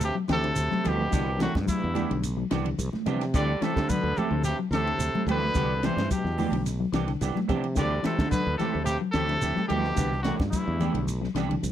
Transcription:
0.01 G2 G4, ride bell, shekere
0.05 C3
0.15 F#3
0.28 D2 A2 C3 E3 C4 G4, snare, ride bell, shekere
0.32 A4
0.43 D3, ride bell
0.56 D2, ride bell, shekere
0.71 F#3, muted fretless electric bass stroke, snare, high conga
0.84 D2 G2 B2 E3 G3 A3 C4 G4, snare, ride bell, high conga, low conga, shekere
1.11 C2 D3 E3 B3 D4 G4, kick, snare, ride bell, shekere
1.38 F#2 A2 E3 B3 D4 F#4 G4, snare, ride bell, high conga, shekere
1.55 G2, kick, snare, high conga
1.66 E2 G2 F#3 E4, kick, ride bell, high conga, shekere
1.84 E2
1.94 E3 B3 D4 G4, ride bell, high conga, low conga, shekere
2.10 B1 D3, ride bell
2.23 ride bell, shekere
2.37 F#3
2.51 C2 E3 B3 D4 G4, snare, ride bell, shekere
2.64 D3, ride bell, low conga
2.79 C2, ride bell, shekere
2.93 muted clean electric guitar stroke, snare, high conga
3.06 C3 E3 G3 B3 D4 G4, ride bell, low conga, shekere
3.21 snare, ride bell
3.34 D2 D3 E3 G3 A3 C4 G4 D5, kick, ride bell, shekere
3.61 A2 C3 E3 A3 C4 G4 A4, muted fretless electric bass stroke, snare, ride bell, high conga, shekere
3.76 D3, kick, snare, high conga
3.89 B2 D3 F#3 B4, kick, ride bell, high conga, shekere
4.03 D2
4.17 A2 C3 A3 C4 G4 A4, muted fretless electric bass stroke, muted clean electric guitar stroke, ride bell, high conga, low conga, shekere
4.31 D2 D3
4.44 G2 C3 G4, ride bell, shekere
4.59 F#3
4.71 D2 A2 E3 A3 C4 G4 A4, snare, ride bell, shekere
4.75 C3
4.87 D3, ride bell
4.98 D2, ride bell, shekere
5.14 F#3, muted fretless electric bass stroke, high conga
5.27 D2 B2 E3 G3 A3 C4 G4, ride bell, high conga, low conga, shekere
5.31 D3 B4
5.55 C2 D3 E3 B3 D4 G4, kick, ride bell, shekere
5.82 C3 E3 B3 D4 G4 C5, snare, ride bell, high conga, shekere
5.96 G2, snare, high conga
6.11 G2 F#3 G4, kick, ride bell, shekere
6.15 B2
6.24 E2, snare
6.38 E3 B3 D4 G4, open hi-hat, high conga, low conga, shekere
6.52 B1 D3, ride bell
6.66 snare, ride bell, shekere
6.80 F#3
6.92 C2 E3 B3 D4 G4, snare, ride bell, shekere
7.07 D3, snare, ride bell
7.21 C2 E3 B3 D4 G4, snare, ride bell, shekere
7.35 F#3, snare, high conga
7.48 C3 E3 B3 D4 G4, muted clean electric guitar stroke, kick, ride bell, low conga, shekere
7.64 ride bell
7.75 D2 D3 E3 G3 A3 C4 G4 D5, kick, snare, ride bell, shekere
8.03 A2 C3 E3 A3 C4 A4, muted fretless electric bass stroke, snare, ride bell, high conga, shekere
8.19 D3, kick, snare, high conga
8.30 B2 D3 F#3 B4, kick, ride bell, shekere
8.47 D2
8.58 A2 C3 E3 A3 C4 G4 A4, snare, ride bell, high conga, low conga, shekere
8.74 D2 D3
8.84 C3 G4, ride bell, shekere
8.89 G2
9.01 F#3
9.12 D2 A2 C3 E3 A3 C4 A4, snare, ride bell, shekere
9.16 G4
9.28 D3, snare, ride bell, low conga
9.42 D2 E3 A3 C4 G4, snare, ride bell, shekere
9.55 F#3, muted fretless electric bass stroke, snare, high conga
9.67 D2 G2 B2 E3 G3 A3 C4 G4, ride bell, high conga, low conga, shekere
9.84 snare
9.96 C2 D3 E3 B3 G4, muted clean electric guitar stroke, kick, snare, ride bell, shekere
10.12 snare
10.23 F#2 A2 E3 B3 D4 F#4 G4, snare, ride bell, high conga, shekere
10.40 G2, kick, snare, high conga
10.50 E2 G2 F#3 E4, kick, ride bell, high conga, shekere
10.68 E2
10.79 E3 B3 D4 G4, ride bell, high conga, low conga, shekere
10.93 B1 D3, ride bell
11.08 ride bell, shekere
11.21 F#3, snare
11.35 C2 E3 B3 D4 G4, snare, ride bell, shekere
11.49 D3, ride bell, low conga
11.63 C2, ride bell, shekere

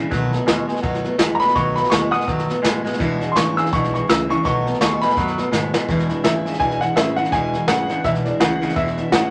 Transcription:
Already playing: E2 D4 E4
0.00 E3 G#3
0.10 B1 B2 D#3 F#3 A3 B3 F#4, kick, snare
0.32 A3 B3 F#4, snare
0.46 D#2 B2 D#3 G#3 A3 B3 F#4, snare, hi-hat pedal
0.68 B2 G#3 A3 B3 F#4, snare
0.76 snare
0.83 F#2 B2 D#3 F#3 A3 B3 F#4, kick, snare
0.94 snare
1.04 A3 B3 F#4, snare
1.19 E2 B2 D#3 G#3 B3, snare, hi-hat pedal
1.23 F#4
1.35 A#5
1.40 B2 G#3 B3 F#4 B5, snare
1.44 A3, snare
1.55 B1 B2 D#3 F#3 A3 B3 F#4 C#6, kick, snare
1.76 A3 B3 F#4 B5, snare
1.84 snare
1.90 D#2 B2 D#3 G#3 A3 C#6, snare, hi-hat pedal
1.94 B3 F#4
2.11 B2 G#3 B3 F#4 F#5 D#6, snare
2.16 A3
2.21 snare
2.27 F#2 B2 D#3 F#3 A3 B3 F#4, kick, snare
2.39 snare
2.48 A3 B3 F#4, snare
2.62 G#2 B2 D#3 G#3 A3, snare, hi-hat pedal
2.66 F#4
2.84 B2 G#3 A3 B3 F#4, snare
2.93 snare
2.99 E1 E2 B2 E3 G#3 D4 E4, kick, snare
3.20 E3 G#3 D4 E4, snare
3.32 E3 C6
3.36 G#1 E2 C#3 G#3 D4 E4 C#6, snare, hi-hat pedal
3.56 E2 C#3 E3 G#3 D4 E4 E6, snare
3.65 snare
3.71 B1 E2 B2 E3 G#3 D4 E4 C#6, kick, snare
3.84 snare
3.93 E3 G#3 D4 E4 C#6, snare
4.08 C#2 E2 C#3 E3 G#3 D4 E4 E6, snare, hi-hat pedal
4.29 E2 C#3 E3 G#3 D4 E4 C#6, snare
4.43 B1 B2 D#3 F#3 A3 B3 F#4 C#6, kick, snare
4.65 A3 B3 F#4, snare
4.74 snare
4.80 D#2 B2 D#3 G#3 A3 B3 F#4 C#6, snare, hi-hat pedal
5.01 B2 G#3 A3 B3 F#4 B5, snare
5.10 snare
5.16 F#2 B2 D#3 F#3 A3 B3 F#4, kick, snare
5.27 snare
5.38 A3 B3 F#4, snare
5.52 G#2 B2 D#3 G#3 A3 B3 F#4, snare, hi-hat pedal
5.73 B2 G#3 A3 B3 F#4, snare
5.89 E1 E2 B2 E3 G#3 D4 E4, kick, snare
5.99 snare
6.09 E3 G#3 D4 E4, snare
6.24 G#1 E2 C#3 E3 G#3 D4 E4 E5, snare, hi-hat pedal
6.45 E2 C#3 E3 G#3 D4 E4, snare
6.53 snare
6.60 B1 E2 B2 E3 G#3 D4 E4 G#5, kick, snare
6.71 snare
6.80 E3 G#3 D4 E4 F#5, snare
6.96 A1 E2 C#3 E3 G#3 D4 E4 E5, snare, hi-hat pedal
7.16 E2 C#3 E3 G#3 D4 E4 F#5, snare
7.25 snare
7.32 E1 E2 B2 E3 G#3 D4 E4 G#5, kick, snare
7.53 E3 G#3 D4 E4, snare
7.68 G#1 E2 C#3 E3 G#3 D4 F#5, snare, hi-hat pedal
7.72 E4
7.89 E2 C#3 E3 G#3 D4 E4, snare
8.04 B1 E2 B2 E3 G#3 D4 E4 E5, kick, snare
8.15 snare
8.25 E3 G#3 D4 E4 D5, snare
8.40 C#2 E2 C#3 E3 G#3 D4 E4 F#5, snare, hi-hat pedal
8.61 E2 C#3 G#3 D4 E4, snare
8.66 E3, snare
8.76 E1 E2 B2 E3 G#3 D4 E4 E5, kick, snare
8.88 snare
8.97 E3 G#3 D4 E4, snare
9.12 G#1 E2 C#3 E3 G#3 D4 E4 F#5, snare, hi-hat pedal

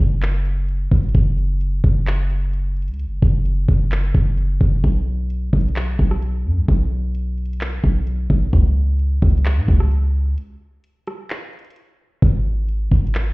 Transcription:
0.00 F#1
0.22 clap, closed hi-hat
0.45 closed hi-hat
0.57 closed hi-hat
0.68 closed hi-hat
0.91 G#1, kick, closed hi-hat
0.97 closed hi-hat
1.03 closed hi-hat
1.09 closed hi-hat
1.15 F#1, kick, closed hi-hat
1.38 closed hi-hat
1.61 closed hi-hat
1.84 F#1, kick, closed hi-hat
2.07 clap, closed hi-hat
2.30 closed hi-hat
2.42 closed hi-hat
2.53 closed hi-hat
2.76 closed hi-hat
2.82 closed hi-hat
2.88 C#2, closed hi-hat
2.94 closed hi-hat
2.99 closed hi-hat
3.05 F#1
3.22 F#1, kick, closed hi-hat
3.45 closed hi-hat
3.68 F#1, kick, closed hi-hat
3.92 clap, closed hi-hat
4.15 F#1, kick, closed hi-hat
4.38 closed hi-hat
4.61 F#1, kick, closed hi-hat
4.84 B1, kick, closed hi-hat
5.30 closed hi-hat
5.53 B1, kick, closed hi-hat
5.61 closed hi-hat
5.68 closed hi-hat
5.76 clap, closed hi-hat
5.99 B1, kick, closed hi-hat
6.11 cross-stick
6.22 closed hi-hat
6.45 F#2
6.57 B1
6.68 B1, kick, closed hi-hat
7.15 closed hi-hat
7.38 closed hi-hat
7.45 closed hi-hat
7.53 closed hi-hat
7.61 clap, closed hi-hat
7.84 B1, kick, closed hi-hat
8.07 closed hi-hat
8.30 B1, kick
8.53 C#2, kick, closed hi-hat
8.99 closed hi-hat
9.22 C#2, kick, closed hi-hat
9.30 closed hi-hat
9.38 closed hi-hat
9.45 clap, closed hi-hat
9.57 G#2
9.68 C#2, kick, closed hi-hat
9.80 cross-stick
9.91 closed hi-hat
10.38 closed hi-hat
10.84 closed hi-hat
11.07 cross-stick, closed hi-hat
11.30 clap, closed hi-hat
11.53 closed hi-hat
11.59 closed hi-hat
11.65 closed hi-hat
11.70 closed hi-hat
11.76 closed hi-hat
12.22 G#1, kick, closed hi-hat
12.68 closed hi-hat
12.91 G#1, kick, closed hi-hat
12.99 closed hi-hat
13.07 closed hi-hat
13.15 clap, closed hi-hat

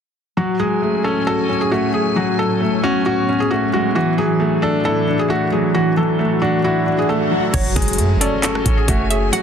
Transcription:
0.37 A2 F#3 C#4 F#4 G#5
0.59 G#3 G#4
0.82 A3
1.04 C#4 A4
1.27 F#4 A4
1.49 C#4
1.61 G#4
1.71 A3 F#4
1.94 G#4
2.16 F#3 B3 F#4
2.39 A4
2.61 A3
2.83 C#4 F#4
3.06 F#4
3.29 C#4
3.40 G#4
3.51 A3 F#4
3.73 G#3 F#4
3.95 E3 D4 F#4, swell
4.18 F#3 G#4
4.40 A3
4.62 D4 A4
4.85 E4 A4
5.08 D4
5.19 G#4
5.29 A3 F#4
5.52 F#3 G#4
5.74 E3 F#4
5.97 F#3 A4
6.19 A3
6.42 D4 F#4
6.64 E4 F#4
6.86 D4
6.98 G#4
7.09 A3 A4
7.31 F#3
7.53 F#1 F#3 F#4 C#5 G#5, kick, closed hi-hat, crash, impact
7.76 F#1 G#3 G#4, kick, closed hi-hat
7.82 closed hi-hat
7.88 closed hi-hat
7.93 closed hi-hat
7.98 F#2 A3, closed hi-hat
8.16 F#1
8.21 C#4 A4 D5, closed hi-hat
8.43 F#4 A4, clap, closed hi-hat
8.55 cross-stick
8.66 A1 C#4, kick, closed hi-hat
8.78 G#4
8.88 F#1 A3 F#4, kick, closed hi-hat
9.10 G#4 E5, closed hi-hat
9.32 F#3 F#4 B4 F#5, closed hi-hat

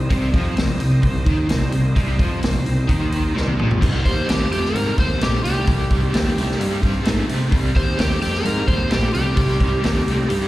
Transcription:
Already playing: C5
0.09 C2 C3 D#4 G4 C5 D#5, kick, open hi-hat
0.32 F2 F3, kick, open hi-hat
0.56 C2 C3, snare, open hi-hat
0.80 C2 C3, open hi-hat
1.02 C2 C3, kick, open hi-hat
1.26 D#2 D#3, kick, open hi-hat
1.49 C2 C3, snare, open hi-hat
1.72 C2 C3, open hi-hat
1.96 C2 C3, kick, open hi-hat
2.18 F2 F3, kick, open hi-hat
2.42 C2 C3, snare, open hi-hat
2.65 C2 C3, open hi-hat
2.87 D#2 D#3, kick, open hi-hat
3.12 open hi-hat
3.35 C2 C3, snare
3.48 A3, high tom
3.53 B3 C4
3.57 A#1 A#2 D4, mid tom
3.62 E4 F4
3.66 G4 A4
3.71 B4, floor tom
3.75 C5 D5
3.80 C2 C3 G3 A#3 D#4 G4 C5, kick, crash
4.05 D#2 C3 G3 C5, kick, open hi-hat
4.28 D#2 C3 A3 G4, snare, open hi-hat
4.50 F2 C3 A3 G4, open hi-hat
4.65 snare
4.74 G#2 C3 G3 A#4, open hi-hat
4.98 D#2 C3 G3 C5, kick, open hi-hat
5.21 A#1 C3 A3 G4, snare, open hi-hat
5.44 C2 C3 A3 G4, open hi-hat
5.67 C2 C3 G3, kick, open hi-hat
5.90 C2 C3 G3, kick, open hi-hat
6.13 D#2 C3 A3, snare, open hi-hat
6.35 C2 C3 A3, open hi-hat
6.51 snare
6.58 G2 C3 G3, open hi-hat
6.82 G2 C3 G3, kick, open hi-hat
7.04 G#2 C3 A3, snare, open hi-hat
7.27 C3 A3, open hi-hat
7.50 C2 C3 G3 D#4 G4 A#4 C5, kick, open hi-hat
7.74 D#2 C3 G3 C5, kick, open hi-hat
7.98 D#2 C3 A3 G4, snare, open hi-hat
8.22 F2 C3 A3 G4, open hi-hat
8.35 snare
8.44 G#2 C3 G3 A#4, open hi-hat
8.67 D#2 C3 G3 C5, kick, open hi-hat
8.90 A#1 C3 A3 G4, snare, open hi-hat
9.13 C2 C3 A3 G4, open hi-hat
9.36 C2 C3 G3, kick, open hi-hat
9.60 C2 C3 G3, kick, open hi-hat
9.83 D#2 C3 A3, snare, open hi-hat
10.06 C2 C3 A3, open hi-hat
10.29 G2 C3 G3, open hi-hat

